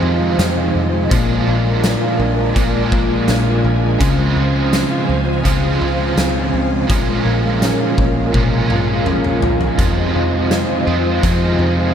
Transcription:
Already playing: F2 C3 D#3 G#3 C4 F4 C5 D#5 G#5
0.02 F2 F4
0.21 G#3
0.39 F2 C4, snare, closed hi-hat, tambourine
0.57 F4
0.75 F2 C4
0.93 G#3
1.10 A#1 A#2 F3 G#3 A#4 D5, kick, closed hi-hat
1.14 D4 F4
1.29 G#3
1.47 A#1 F4
1.65 G#3
1.84 D4, snare, closed hi-hat, tambourine
2.01 F4
2.19 A#1 D4
2.37 G#3
2.54 A#1 A#2 F3 G#3, kick, closed hi-hat
2.59 D4 F4
2.73 G#3
2.92 A#1 F4, kick
3.10 G#3
3.28 A#1 D4, snare, closed hi-hat, tambourine
3.46 F4
3.64 A#1 D4
3.83 G#3
3.99 C#2 C#3 F3 G#3 F4 C5 F5, kick, closed hi-hat
4.03 C4 F4
4.18 G#3
4.36 C#2 F4
4.55 G#3
4.73 C4, snare, closed hi-hat, tambourine
4.91 F4
5.09 C#2 C4
5.27 G#3
5.44 C#2 C#3 F3 G#3, kick, closed hi-hat
5.48 C4 F4
5.63 G#3
5.81 C#2 F4
5.99 G#3
6.17 C#2 C4, snare, closed hi-hat, tambourine
6.36 F4
6.53 C#2 C4
6.72 G#3
6.87 A#1 A#2 F3 G#3 A#4, kick, closed hi-hat
6.91 C#4 F4
7.08 G#3
7.25 A#1 F4
7.45 G#3
7.62 C#4, snare, closed hi-hat, tambourine
7.80 F4
7.98 A#1 C#4, kick
8.17 G#3
8.32 A#1 A#2 F3 G#3, kick, high tom
8.36 C#4 F4
8.52 G#3
8.70 A#1 F4, mid tom
8.88 G#3
9.06 A#1 C#4, mid tom
9.24 F4, mid tom
9.42 A#1 C#4, floor tom
9.60 G#3, floor tom
9.78 F2 C3 D#3 G#3 C4 F4 C5 D#5, kick, closed hi-hat
9.97 G#3
10.15 F2 F4
10.33 G#3
10.51 C4, snare, closed hi-hat, tambourine
10.69 F4
10.87 F2 D#3 G#3 C4 F4
11.05 G#3
11.22 F2 C3 D#3 G#3, kick, closed hi-hat
11.26 C4 F4
11.42 G#3
11.59 F2 F4
11.78 G#3

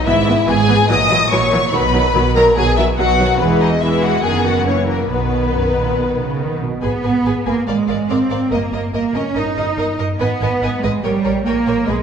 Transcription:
0.06 G#1 G#2 E3 B3 E4 E5
0.28 E3 B3
0.47 G#1 G#2 E3 B3 G#4 G#5
0.68 E3 B3
0.89 A#1 A#2 E3 F#3 D#5 D#6
1.10 E3 F#3
1.32 A#1 A#2 E3 F#3 C#5 C#6
1.52 E3 F#3
1.73 B1 B2 D#3 F#3 B4 B5
1.94 D#3 F#3
2.15 B1 B2 D#3 F#3
2.36 D#3 F#3 A#4 A#5
2.56 B1 B2 D#3 F#3 G#4 G#5
2.76 D#3 F#3 E4 E5
2.98 B1 B2 D#3 F#3 F#4 F#5
3.20 D#3 F#3
3.39 E1 E2 E3 G#3 B3 B4
3.61 D#4 D#5
3.82 E3 G#3 E4 E5
4.03 F#4 F#5
4.24 F#1 F#2 D#3 B3 G#4 G#5
4.45 F#4 F#5
4.67 E3 A#3 C#4 C#5
4.88 A#3 A#4
5.09 B1 B2 D#3 B3 B4
5.54 F#2
5.76 A#2
5.98 B2
6.19 C#3
6.41 D#3
6.62 B2
6.82 G#1 B3 G#4 B4 G#5
7.03 G#1 G#4 B4 G#5
7.25 G#1 G#4 B4 G#5
7.45 G#1 A#3 G#4 B4 G#5
7.67 G#1 G#3 A#4 D5 F5
7.87 G#1 A#4 D5 F5
8.09 G#1 C4 A#4 D5 F5
8.30 G#1 A#4 D5 F5
8.51 G1 A#3 A#4 D#5
8.72 G1 A#4 D#5
8.93 G1 A#3 A#4 D#5
9.14 G1 C#4 A#4 D#5
9.36 G1 D#4 A#4 D#5
9.57 G1 A#4 D#5
9.77 G1 A#4 D#5
9.99 G1 A#4 D#5
10.20 G#1 B3 B4 D#5 G#5
10.41 G#1 B4 D#5 G#5
10.62 G#1 B4 D#5 G#5
10.83 G#1 G#3 B4 D#5 G#5
11.03 A#1 G3 A#4 C#5 G5
11.24 A#1 A#4 C#5 G5
11.46 A#1 A#3 A#4 C#5 G5
11.66 A#1 A#4 C#5 G5
11.86 B1 G#3 G#4 B4 D#5

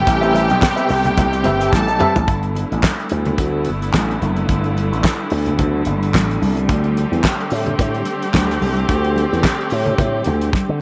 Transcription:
Already playing: C3 G3 A3 B3 G4 G5
0.07 A1 G4, muted clean electric guitar stroke, kick, closed hi-hat, shaker
0.21 C4 G4 B4 E5, closed hi-hat, shaker
0.33 C4 G4 B4 E5, closed hi-hat, muted conga
0.49 B1, muted clean electric guitar stroke, closed hi-hat, shaker
0.61 muted clean electric guitar stroke, kick, snare, clap, high conga, shaker
0.76 C4 G4 B4 E5, closed hi-hat, shaker
0.88 C2, muted clean electric guitar stroke, open hi-hat, shaker
1.04 muted clean electric guitar stroke, closed hi-hat, low conga, shaker
1.17 C2, muted clean electric guitar stroke, kick, closed hi-hat, muted conga, low conga, shaker
1.32 muted clean electric guitar stroke, closed hi-hat, shaker
1.44 G1 C4 G4 B4 E5, closed hi-hat, muted conga, low conga
1.59 C4 G4 B4 E5, closed hi-hat, shaker
1.73 A1 A4 A5, kick, snare, high conga, shaker
1.88 B1, muted clean electric guitar stroke, shaker
1.99 C4 G4 B4 E5, mid tom, high conga, shaker
2.15 A1, muted clean electric guitar stroke, floor tom, shaker
2.28 G1 D3 G3 A3 B3 E4, kick, closed hi-hat
2.43 closed hi-hat
2.55 closed hi-hat, muted conga
2.72 A1, closed hi-hat
2.83 kick, snare, clap, high conga
2.99 closed hi-hat
3.09 D2, closed hi-hat
3.25 closed hi-hat, low conga
3.38 D2, kick, closed hi-hat, muted conga
3.65 G1, closed hi-hat
3.82 closed hi-hat
3.93 A1, kick, snare, clap, high conga
4.11 closed hi-hat
4.22 F#1, closed hi-hat, high conga
4.36 closed hi-hat
4.49 G1, kick, closed hi-hat
4.64 closed hi-hat
4.77 closed hi-hat, muted conga
4.92 A1, closed hi-hat
5.04 kick, snare, clap, high conga
5.30 D2, open hi-hat
5.46 closed hi-hat, low conga
5.59 D2, kick, closed hi-hat, muted conga, low conga
5.85 G1, closed hi-hat, muted conga, low conga
6.03 closed hi-hat
6.14 A1, kick, snare, clap, high conga
6.31 closed hi-hat
6.42 C2, open hi-hat, high conga
6.57 closed hi-hat
6.68 D2 A3 C4 G4, kick, closed hi-hat
6.84 closed hi-hat
6.97 closed hi-hat, muted conga
7.12 E2, closed hi-hat
7.24 kick, snare, clap, high conga
7.41 closed hi-hat
7.50 A2, open hi-hat
7.66 closed hi-hat, low conga
7.79 A2, kick, closed hi-hat, muted conga
7.94 closed hi-hat
8.05 closed hi-hat, muted conga
8.22 closed hi-hat
8.33 D2, kick, snare, clap, high conga
8.51 snare, closed hi-hat
8.61 C2, open hi-hat, high conga
8.77 closed hi-hat
8.89 D2, kick, closed hi-hat
9.04 closed hi-hat
9.16 closed hi-hat, muted conga
9.33 E2, closed hi-hat
9.43 kick, snare, clap, high conga
9.61 closed hi-hat
9.70 A2, open hi-hat
9.86 closed hi-hat, low conga
9.98 A2, kick, closed hi-hat, muted conga, low conga
10.24 D2, closed hi-hat, low conga
10.41 closed hi-hat
10.52 kick, snare, high conga
10.69 D3

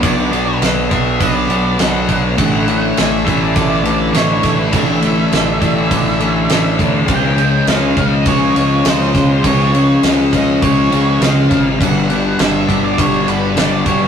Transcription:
Already playing: D4 F#4 B4 F#5
0.01 B1 B2 F#3 B3 D4 D5, kick, ride
0.31 F#3 B3 D4, ride
0.61 B1 B2 F#3 B3 D4, snare, ride
0.90 B1 F#3 B3 D4 E5, kick, ride
1.19 B1 B2 F#3 B3 D4 D5, kick, ride
1.50 B1 F#3 B3 D4, ride
1.78 B1 B2 F#3 B3 D4 F#5, snare, ride
2.08 B1 F#3 B3 D4, kick, ride
2.37 A1 A2 D3 E3 A3 D4 E4 A4 E5 F#5, kick, ride
2.67 E3 A3 D4, ride
2.96 A1 D3 E3 A3 D4 E5, snare, ride
3.26 A1 E3 A3 D4, kick, ride
3.42 D5
3.55 A1 A2 D3 E3 A3 D4, kick, ride
3.83 A1 E3 A3 D4, ride
4.13 A1 A2 D3 E3 A3 D4 C#5, snare, ride
4.43 A1 E3 A3 D4, kick, snare, ride
4.59 B4
4.73 A1 A2 D3 E3 A3 D4 D5 E5, kick, ride
5.02 E3 A3 D4, ride
5.32 A1 D3 E3 A3 D4, snare, ride
5.61 A1 E3 A3 D4, kick, ride
5.90 A1 A2 D3 E3 A3 D4, kick, ride
6.20 A1 E3 A3 D4, ride
6.49 A1 A2 D3 E3 A3 D4, snare, ride
6.79 D2 E3 A3 D4, kick, ride
7.07 C#2 C#3 F3 G#3 C#4 F4 G#4 D#5 G5, kick, ride
7.38 F3 G#3 C#4, ride
7.67 C#2 C#3 F3 G#3 C#4 F5, snare, ride
7.97 C#2 F3 G#3 C#4, kick, ride
8.14 D#5
8.26 C#2 C#3 F3 G#3 C#4 C#5, kick, ride
8.55 C#2 G#3 C#4, ride
8.60 F3
8.85 C#2 C#3 F3 G#3 C5, snare, ride
8.89 C#4
9.14 C#2 F3 G#3 C#4, kick, snare, ride
9.44 C#2 C#3 F3 G#3 C#4 C#5, kick, ride
9.74 F3 G#3 C#4, ride
10.03 C#2 C#3 F3 G#3 C#4, snare, ride
10.33 C#2 F3 G#3 C#4 D#5, kick, ride
10.62 C#2 C#3 F3 G#3 C#4 C#5, kick, ride
10.92 C#2 G#3 C#4, ride
10.96 F3
11.20 C#2 C#3 F3 G#3 F5, snare, ride
11.25 C#4
11.51 G#1 F3 G#3 C#4, kick, ride
11.80 G1 G2 D3 G3 B3 D4 F#4 G4 D5 F#5, kick, ride
12.10 D3 G3 B3 D4, ride
12.39 G1 D3 G3 B3 D4, snare, ride
12.43 E5
12.69 G1 D3 G3 B3 D4, kick, ride
12.84 D5
12.98 G1 G2 D3 G3 B3 D4 C#5, kick, ride
13.27 G1 D3 G3 B3 D4 B4, ride
13.55 G1 G2 D3 G3 B3 D4 D5, snare, ride
13.85 G1 D3 G3 B3 D4 C#5, kick, ride
13.89 G3

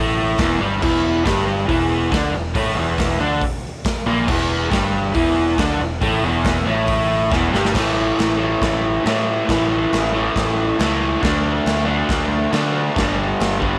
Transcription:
Already playing: A1 A2 A3
0.38 E1 E2 E3, kick, snare, open hi-hat
0.61 G1 G2 G3
0.82 E1 E2 E3, kick, crash
1.24 G1 G2 G3, kick, snare, open hi-hat
1.66 E1 E2 E3, kick, open hi-hat
2.11 D2 D3 D4, kick, snare, open hi-hat
2.32 E1 E2
2.54 A1 A2 A3, kick, open hi-hat
2.75 E1 E2 E3
2.98 kick, snare, open hi-hat
3.19 D2 D3 D4
3.42 kick, open hi-hat
3.84 kick, snare, open hi-hat
4.06 A#1 A#2 A#3
4.27 E1 E2 E3, kick, crash
4.70 G1 G2 G3, kick, snare, open hi-hat
5.14 E1 E2 E3, kick, open hi-hat
5.58 D2 D3 D4, kick, snare, open hi-hat
5.80 E1 E2
6.01 A1 A2 A3, kick, open hi-hat
6.23 E1 E2 E3
6.44 kick, snare, open hi-hat
6.66 A1 A2 A3
6.87 kick, open hi-hat
7.31 E1 E2 E3, kick, snare
7.52 G1 G2 G3, snare
7.65 snare
7.73 A1 A2 E3, kick, snare, crash
7.78 A3
8.19 A1, snare, crash
8.37 E3 A3
8.42 A2
8.61 A1, kick, snare, crash
9.03 A2 E3, snare, crash
9.08 A3
9.46 A1 A2 E3, kick, snare, crash
9.51 A3
9.93 A1, snare, crash
10.13 E3 A3
10.18 A2
10.36 A1, kick, snare, crash
10.78 C#2 A2 E3, snare, crash
10.83 A3
11.21 D2 D3 A3, kick, snare, crash
11.26 D4
11.65 D2, snare, crash
11.85 A3 D4
11.91 D3
12.09 D2, kick, snare, crash
12.51 D3 A3, snare, crash
12.56 D4
12.94 G1 G2 D3, kick, crash
12.98 G3, snare
13.40 G1, snare, crash
13.59 D3 G3, kick
13.64 G2

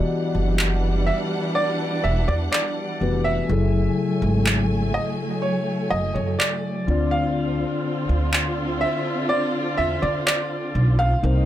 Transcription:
Already playing: E3 G3 B3 D4 F#4 G4 D5 D#5 F#5
0.35 F#1
0.59 clap
1.06 E5
1.55 D5
2.04 E1 E5
2.28 E2 D5
2.52 D5, clap
3.01 F1 E3 B3 F#4 G4 B4
3.24 E5
3.49 F#1 C#3 F#3 A3 E4 G#4 A4 G#5
4.22 G#1
4.46 clap
4.94 D#5
5.42 C#5
5.90 F#1 D#5
6.14 F#2 C#5
6.39 D5, clap
6.87 D2 D3 C4 D4 F4 D5
7.11 F5
8.09 D2
8.33 clap
8.81 E5
9.29 D5
9.77 E2 E5
10.02 D3 D5
10.26 D5, clap
10.75 B1
10.99 F5
11.22 C2 C3 A#3 C4 D#4 A#4 C5

